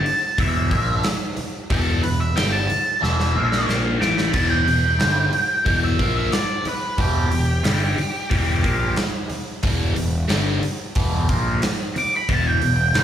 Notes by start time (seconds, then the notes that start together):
Already playing: A5
0.05 muted overdriven electric guitar stroke, muted picked electric bass stroke, open hi-hat
0.38 E1 E2 B2 E3 E5, kick, open hi-hat
0.70 A#1 A#2 F3 A#3, kick, open hi-hat
1.04 muted overdriven electric guitar stroke, muted picked electric bass stroke, snare, open hi-hat
1.37 muted overdriven electric guitar stroke, muted picked electric bass stroke, open hi-hat
1.70 E1 E2 B2 E3 A4, kick, open hi-hat
2.03 E1 E2 B2 B4, open hi-hat
2.20 E5
2.36 G1 G2 D3 G3 G5, snare, open hi-hat
2.52 A5
2.70 muted overdriven electric guitar stroke, muted picked electric bass stroke, open hi-hat
3.02 E1 E2 B2 E3 E5, snare
3.20 snare
3.35 A#1 A#2 F3 A#3
3.52 snare
3.67 A#1 A#2 F3 A#3, snare
3.99 A1 A2 E3 A3 D6, snare
4.18 B5, snare
4.32 E1 E2 B2 E3 A5, kick, open hi-hat, crash
4.50 G5
4.66 E1 E2 B2, open hi-hat
4.99 G1 G2 D3 G3, snare, open hi-hat
5.32 muted picked electric bass stroke, muted overdriven electric guitar stroke, open hi-hat
5.65 E1 E2 B2 E3, kick, open hi-hat
5.84 E5
5.99 A#1 A#2 F3 A#3, kick, open hi-hat
6.16 E5
6.32 D5, muted overdriven electric guitar stroke, muted picked electric bass stroke, snare, open hi-hat
6.65 B4, muted picked electric bass stroke, muted overdriven electric guitar stroke, open hi-hat
6.98 E1 E2 B2 E3 G4, kick, open hi-hat
7.31 E1 E2 B2, open hi-hat
7.64 G1 G2 D3 G3, snare, open hi-hat
7.97 muted picked electric bass stroke, muted overdriven electric guitar stroke, open hi-hat
8.30 E1 E2 B2 E3, kick, open hi-hat
8.63 A#1 A#2 F3 A#3, kick, open hi-hat
8.96 muted picked electric bass stroke, muted overdriven electric guitar stroke, snare, open hi-hat
9.30 muted picked electric bass stroke, muted overdriven electric guitar stroke, open hi-hat
9.63 E1 E2 B2 E3, kick, open hi-hat
9.95 E1 E2 B2, open hi-hat
10.28 G1 G2 D3 G3, snare, open hi-hat
10.62 muted picked electric bass stroke, muted overdriven electric guitar stroke, open hi-hat
10.95 E1 E2 B2 E3, kick, open hi-hat
11.29 A#1 A#2 F3 A#3, kick, open hi-hat
11.62 muted picked electric bass stroke, muted overdriven electric guitar stroke, snare, open hi-hat
11.96 D6, muted overdriven electric guitar stroke, muted picked electric bass stroke, open hi-hat
12.16 B5
12.29 E1 E2 B2 E3, kick, open hi-hat
12.34 A5
12.49 G5
12.62 E1 E2 B2, open hi-hat
12.94 G1 G2 D3 G3, snare, open hi-hat